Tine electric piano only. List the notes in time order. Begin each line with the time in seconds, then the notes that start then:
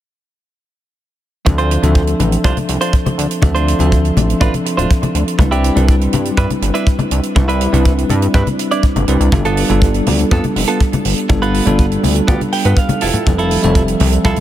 1.45 F3 C4 D4 A4 E5
1.82 F3 C4 D4 A4 E5
3.42 F3 C4 D4 A4 E5
3.79 F3 C4 D4 A4 E5
5.39 G3 C4 D4 E4 B4
5.75 G3 C4 D4 E4 B4
7.35 G3 C4 D4 E4 B4
7.72 G3 C4 D4 E4 B4
9.08 G3 C4 D4 E4 B4
9.32 G3 B3 D4 F4 A4
9.69 G3 B3 D4 F4 A4
11.29 G3 B3 D4 F4 A4
11.65 G3 B3 D4 F4 A4
13.26 F3 G3 C4 A4 E5
13.62 F3 G3 C4 A4 E5